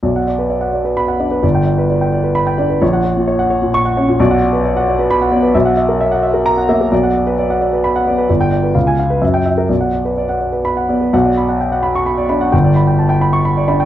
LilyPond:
<<
  \new Staff \with { instrumentName = "Grand piano" } { \time 3/4 \key b \minor \tempo 4 = 130 << { r2 b''8 r8 | r2 b''8 r8 | r2 cis'''8 r8 | r2 b''8 r8 |
r2 ais''8 r8 | r2 b''8 r8 | r16 g''8 r8 gis''8 r8 g''8 r16 | r2 b''8 r8 |
r4. r16 cis'''16 r4 | r4. r16 cis'''16 r4 | } \\ { d''16 fis''16 d''16 b'16 d''16 fis''16 d''16 b'8 fis''16 d''16 b'16 | d''16 g''16 d''16 b'16 d''16 g''16 d''16 b'8 g''16 d''16 b'16 | cis''16 fis''16 cis''16 ais,16 cis''16 fis''16 cis''16 ais,8 fis''16 cis''16 ais,16 | d''16 fis''16 d''16 b'16 d''16 fis''16 d''16 b'8 fis''16 d''16 b'16 |
e''16 fis''16 e''16 ais'16 e''16 fis''16 e''16 ais'8 fis''16 e''16 ais'16 | d''16 fis''16 d''16 b'16 d''16 fis''16 d''16 b'8 fis''16 d''16 b'16 | d''8 d''16 b'16 eis''8 eis''16 b'16 e''8 e''16 ais'16 | d''16 fis''16 d''16 b'16 d''16 fis''16 d''16 b'8 fis''16 d''16 b'16 |
fis''16 d''16 b''16 fis''16 g''16 fis''16 b''8 b''16 d''16 b''16 fis''16 | g''16 d''16 b''16 g''16 a''16 g''16 b''8 b''16 d''16 b''16 g''16 | } >> }
  \new Staff \with { instrumentName = "Grand piano" } { \clef bass \time 3/4 \key b \minor b,,2~ b,,8 d'8 | g,,2~ g,,8 d'8 | ais,,2~ ais,,8 cis'8 | b,,2~ b,,8 b8 |
b,,2~ b,,8 ais8 | b,,2~ b,,8 b8 | g,,4 cis,4 fis,4 | b,,2~ b,,8 b8 |
b,,2~ b,,8 d'8 | g,,2~ g,,8 d'8 | }
>>